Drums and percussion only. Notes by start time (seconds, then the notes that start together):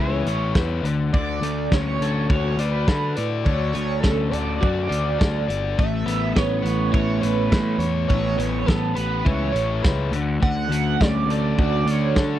0.26 closed hi-hat
0.55 kick, snare
0.85 closed hi-hat
1.14 kick
1.43 closed hi-hat
1.72 kick, snare
2.02 snare, closed hi-hat
2.30 kick
2.59 closed hi-hat
2.88 kick, snare
3.17 closed hi-hat
3.46 kick
3.75 closed hi-hat
4.03 kick, snare
4.33 closed hi-hat
4.63 kick
4.92 closed hi-hat
5.21 kick, snare
5.50 closed hi-hat
5.79 kick
6.08 closed hi-hat
6.36 kick, snare
6.66 snare, closed hi-hat
6.94 kick
7.23 closed hi-hat
7.52 kick, snare
7.80 closed hi-hat
8.10 kick
8.40 closed hi-hat
8.68 kick, snare
8.96 closed hi-hat
9.26 kick
9.56 closed hi-hat
9.84 kick, snare
10.13 closed hi-hat
10.43 kick
10.72 closed hi-hat
11.01 kick, snare
11.30 closed hi-hat
11.59 kick
11.87 closed hi-hat
12.16 kick, snare